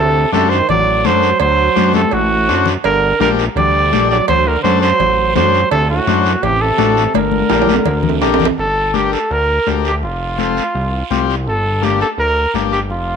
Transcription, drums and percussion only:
0.34 high conga, short guiro
0.51 short guiro
0.69 cowbell, high conga, low conga, long guiro
1.05 high conga, short guiro
1.23 short guiro
1.40 cowbell, long guiro
1.76 high conga, short guiro
1.94 high conga, short guiro
2.11 cowbell, high conga, long guiro
2.49 short guiro
2.66 low conga, short guiro
2.84 cowbell, high conga, long guiro
3.21 high conga, short guiro
3.39 short guiro
3.57 cowbell, high conga, low conga, long guiro
3.93 high conga, short guiro
4.11 short guiro
4.28 cowbell, high conga, low conga, long guiro
4.65 high conga, short guiro
4.83 short guiro
5.00 cowbell, high conga, low conga, long guiro
5.36 high conga, low conga, low timbale, short guiro
5.54 short guiro
5.71 cowbell, long guiro
6.07 high conga, short guiro
6.26 short guiro
6.43 cowbell, high conga, low conga, long guiro
6.78 high conga, low timbale, short guiro
6.97 short guiro
7.14 cowbell, high conga, long guiro
7.32 high conga
7.50 high conga, high timbale, short guiro
7.62 high timbale
7.68 high conga, short guiro
7.74 low timbale
7.85 cowbell, low conga, long guiro
8.03 low conga
8.09 low timbale
8.22 low timbale, short guiro
8.34 low timbale
8.40 low conga, short guiro
8.45 low timbale
8.58 high conga, long guiro
8.94 high conga, short guiro
9.13 short guiro
9.31 high conga, long guiro
9.67 high conga, short guiro
9.85 short guiro
10.03 high conga, long guiro
10.38 high conga, short guiro
10.57 short guiro
10.75 high conga, long guiro
11.11 high conga, short guiro
11.30 short guiro
11.47 high conga, long guiro
11.83 high conga, short guiro
12.01 short guiro
12.19 high conga, long guiro
12.54 high conga, short guiro
12.73 short guiro
12.90 high conga, long guiro

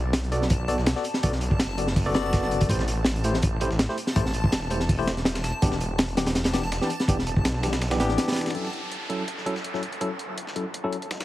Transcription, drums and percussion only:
0.13 snare, closed hi-hat
0.23 closed hi-hat
0.32 closed hi-hat
0.42 snare
0.50 kick, closed hi-hat
0.68 closed hi-hat
0.78 snare
0.86 snare, closed hi-hat
0.96 snare
1.04 closed hi-hat
1.14 snare
1.23 kick, closed hi-hat
1.32 snare
1.41 closed hi-hat
1.51 kick
1.59 snare, closed hi-hat
1.69 snare
1.78 closed hi-hat
1.87 snare
1.96 kick, closed hi-hat, open hi-hat
2.14 snare, closed hi-hat
2.24 snare
2.33 kick, snare, closed hi-hat
2.42 snare
2.51 closed hi-hat
2.61 kick, closed hi-hat
2.69 kick, closed hi-hat
2.79 snare
2.88 closed hi-hat
3.04 snare
3.06 snare, closed hi-hat
3.16 closed hi-hat
3.24 closed hi-hat
3.34 snare
3.42 kick, closed hi-hat
3.61 closed hi-hat
3.71 snare
3.79 snare, closed hi-hat
3.89 snare
3.98 closed hi-hat
4.07 snare, closed hi-hat
4.16 kick, closed hi-hat
4.26 snare
4.33 closed hi-hat
4.44 kick
4.52 snare, closed hi-hat
4.62 snare
4.70 closed hi-hat
4.80 snare
4.89 kick, closed hi-hat, open hi-hat
5.07 snare, closed hi-hat
5.17 snare, closed hi-hat
5.25 snare, closed hi-hat
5.35 snare, closed hi-hat
5.44 snare, closed hi-hat
5.62 kick, closed hi-hat
5.72 snare
5.81 closed hi-hat
5.98 snare, closed hi-hat
6.08 closed hi-hat
6.17 snare, closed hi-hat
6.26 snare, closed hi-hat
6.35 snare, closed hi-hat
6.44 snare, closed hi-hat
6.53 snare, closed hi-hat
6.63 snare, closed hi-hat
6.72 snare, closed hi-hat
6.81 snare
6.90 closed hi-hat
7.00 snare, closed hi-hat
7.08 kick, closed hi-hat
7.19 snare
7.27 closed hi-hat
7.36 kick
7.45 snare, closed hi-hat
7.55 snare
7.63 snare, closed hi-hat
7.73 snare, closed hi-hat
7.81 snare, closed hi-hat, open hi-hat
7.91 snare, closed hi-hat
8.00 snare, closed hi-hat
8.09 snare
8.18 snare, closed hi-hat
8.28 snare, closed hi-hat
8.32 snare, closed hi-hat
8.36 snare, closed hi-hat
8.41 snare, closed hi-hat
8.46 snare, closed hi-hat
8.50 snare, closed hi-hat
8.55 closed hi-hat
8.65 snare
8.73 closed hi-hat
8.92 closed hi-hat
9.10 closed hi-hat
9.28 closed hi-hat
9.38 snare
9.46 closed hi-hat
9.56 snare
9.64 closed hi-hat
9.74 snare
9.83 closed hi-hat
9.93 closed hi-hat
10.01 closed hi-hat
10.19 closed hi-hat
10.38 closed hi-hat
10.47 snare
10.56 closed hi-hat
10.74 closed hi-hat
10.93 closed hi-hat
11.02 closed hi-hat
11.11 snare, closed hi-hat
11.20 snare, closed hi-hat

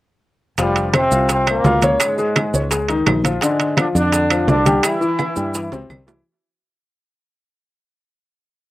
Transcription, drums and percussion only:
0.58 high bongo, high conga, high timbale, maracas
0.76 high bongo, high conga, high timbale, maracas
0.93 high bongo, high conga, high timbale, low timbale, claves, maracas
1.12 maracas
1.29 high bongo, high conga, high timbale, maracas
1.46 high bongo, high conga, high timbale, claves, maracas
1.64 high bongo, low bongo, high conga, low timbale, maracas
1.82 high bongo, high conga, high timbale, maracas
2.00 high bongo, high conga, high timbale, claves, maracas
2.18 high bongo, high conga, maracas
2.36 high bongo, high conga, high timbale, low timbale, claves, maracas
2.54 high conga, maracas
2.71 high bongo, high conga, high timbale, maracas
2.88 high bongo, high conga, high timbale, maracas
3.06 high bongo, low bongo, high conga, high timbale, low timbale, claves, maracas
3.24 high bongo, high conga, high timbale, maracas
3.41 high bongo, high conga, high timbale, maracas
3.60 high bongo, high conga, high timbale, maracas
3.77 high bongo, high conga, high timbale, low timbale, claves, maracas
3.96 maracas
4.12 high bongo, high conga, high timbale, maracas
4.30 high bongo, high conga, high timbale, claves, maracas
4.48 high bongo, low bongo, high conga, low timbale, maracas
4.66 high bongo, high conga, high timbale, maracas
4.83 high bongo, high conga, high timbale, claves, maracas
5.01 high bongo, high conga, maracas
5.19 high bongo, high conga, high timbale, claves, maracas
5.36 high conga, maracas
5.54 high bongo, high conga, maracas
5.72 high bongo, high conga, low timbale, maracas
5.90 high bongo, low bongo, high conga, claves, maracas
6.08 high bongo, low timbale, maracas

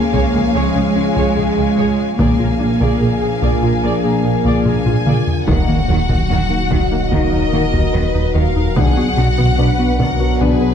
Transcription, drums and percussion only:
0.14 taiko
1.16 taiko
2.19 taiko
2.81 taiko
3.42 taiko
4.45 taiko
4.66 taiko low-mid
4.86 taiko low-mid
5.06 taiko mid
5.27 taiko low
5.48 taiko
6.09 taiko
6.71 taiko
7.12 taiko
7.73 taiko
8.76 taiko
9.38 taiko
10.00 taiko
10.41 taiko

